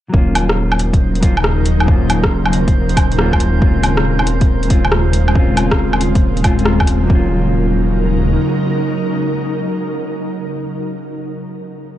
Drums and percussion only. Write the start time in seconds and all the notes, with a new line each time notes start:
0.14 kick
0.35 closed hi-hat, low woodblock
0.49 cross-stick
0.72 low woodblock
0.79 closed hi-hat
0.93 kick, closed hi-hat
1.15 closed hi-hat
1.23 kick, closed hi-hat
1.37 low woodblock
1.44 cross-stick
1.66 closed hi-hat
1.80 low woodblock
1.88 kick
2.10 closed hi-hat, low woodblock
2.24 kick, cross-stick
2.46 low woodblock
2.53 closed hi-hat
2.68 kick, closed hi-hat
2.89 closed hi-hat
2.97 kick, closed hi-hat, low woodblock
3.12 closed hi-hat
3.19 cross-stick
3.33 kick, low woodblock
3.40 closed hi-hat
3.62 kick
3.83 closed hi-hat, low woodblock
3.97 cross-stick
4.19 low woodblock
4.27 closed hi-hat
4.41 kick, closed hi-hat
4.63 closed hi-hat
4.70 kick, closed hi-hat
4.85 low woodblock
4.92 cross-stick
5.13 closed hi-hat
5.28 low woodblock
5.35 kick
5.57 closed hi-hat, low woodblock
5.71 kick, cross-stick
5.93 low woodblock
6.01 closed hi-hat
6.15 kick, closed hi-hat
6.37 closed hi-hat
6.44 kick, closed hi-hat, low woodblock
6.59 closed hi-hat
6.65 cross-stick
6.80 kick, low woodblock
6.87 closed hi-hat
7.10 kick